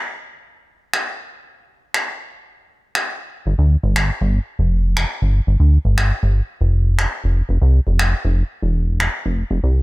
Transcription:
0.93 finger snap
1.94 finger snap
2.95 finger snap
3.46 analog synth bass G1
3.58 analog synth bass D2
3.83 analog synth bass G1
3.96 finger snap
4.21 analog synth bass G1
4.59 analog synth bass F1
4.97 finger snap
5.22 analog synth bass G1
5.47 analog synth bass G1
5.60 analog synth bass D2
5.85 analog synth bass G1
5.98 finger snap
6.23 analog synth bass G1
6.61 analog synth bass F1
6.99 finger snap
7.24 analog synth bass F1
7.49 analog synth bass F1
7.62 analog synth bass C2
7.87 analog synth bass F1
7.99 finger snap
8.25 analog synth bass F1
8.62 analog synth bass E1
9.00 finger snap
9.25 analog synth bass F1
9.51 analog synth bass F1
9.63 analog synth bass C2

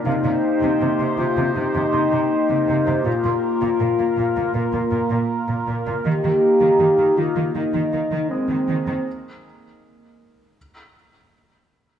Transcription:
Already playing: grand piano A#3 A#4
0.05 cello section C3, analog synth pad A#3 D#4 G4 C5, french horn section D#4, grand piano F5
0.25 cello section C3
0.62 cello section C3
0.81 cello section C3
0.99 cello section C3
1.18 cello section C3, french horn section F4
1.37 cello section C3
1.55 cello section C3, french horn section D#4
1.75 cello section C3
1.93 cello section C3, grand piano D#4 D#5
2.12 cello section C3
2.49 cello section C3
2.68 cello section C3
2.87 cello section C3
3.04 cello section A#2, french horn section F4, analog synth pad F4 A#4
3.24 cello section A#2
3.61 cello section A#2
3.80 cello section A#2
3.99 cello section A#2
4.17 cello section A#2
4.36 cello section A#2
4.54 cello section A#2, french horn section A#4
4.73 cello section A#2
4.92 cello section A#2
5.10 cello section A#2
5.48 cello section A#2
5.67 cello section A#2
5.86 cello section A#2
6.05 cello section D#3, analog synth pad A#3 D#4, french horn section G4
6.24 cello section D#3
6.61 cello section D#3
6.80 cello section D#3
6.99 cello section D#3
7.17 cello section D#3, french horn section F4
7.37 cello section D#3
7.55 cello section D#3, french horn section D#4
7.75 cello section D#3
7.93 cello section D#3
8.12 cello section D#3
8.30 grand piano G#3 G#4, french horn section C4
8.49 cello section D#3
8.68 cello section D#3
8.87 cello section D#3

